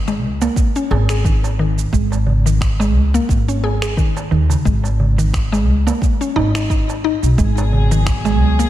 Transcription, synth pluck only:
0.08 G#3
0.42 A#3
0.76 C#4
0.91 G#4
1.10 G#4
1.25 D#3
1.59 D#3
1.93 G#3
2.46 D#3
2.80 G#3
3.14 A#3
3.48 C#4
3.64 G#4
3.82 G#4
3.97 D#3
4.31 D#3
4.65 G#3
5.18 D#3
5.52 G#3
5.87 A#3
6.21 C#4
6.36 D#4
6.55 D#4
6.70 D#4
7.04 D#4
7.38 G#3
7.91 D#3
8.25 G#3
8.59 A#3

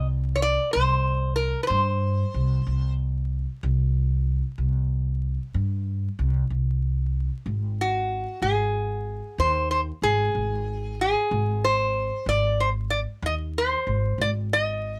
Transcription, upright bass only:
Already playing: C2
0.75 C2
1.70 G2
2.34 C2
2.67 C2
3.63 C2
4.58 C2
5.54 G2
6.19 C2
6.50 C2
7.46 G#1
8.42 G#1
9.38 D#2
10.02 G#1
10.35 G#1
11.31 G#1
12.26 G#1
13.22 D#2
13.87 G#1
14.18 G#1

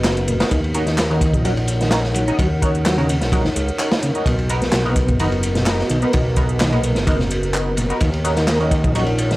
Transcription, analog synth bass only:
0.04 F#1
0.51 D#2
1.34 A#1
2.39 D#2
3.21 A#1
3.56 C#2
4.26 B1
5.09 F#1
5.90 B1
6.14 B1
6.96 F#1
7.77 F#1
8.01 D#2
8.84 A#1

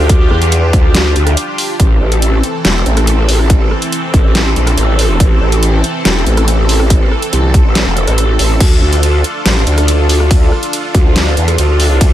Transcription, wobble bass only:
Already playing: D2
0.31 E2
0.73 D2
1.16 D2
1.80 A1
2.01 A1
2.65 E1
2.86 A1
4.14 A1
4.56 A#1
4.77 A1
5.20 A1
5.41 A1
6.05 E1
6.26 A1
7.33 C2
7.65 A1
7.86 E1
8.07 A1
8.39 A1
8.60 D2
8.82 D2
9.46 A1
9.67 D2
10.95 D2
11.37 E2
11.58 D2
12.01 D2

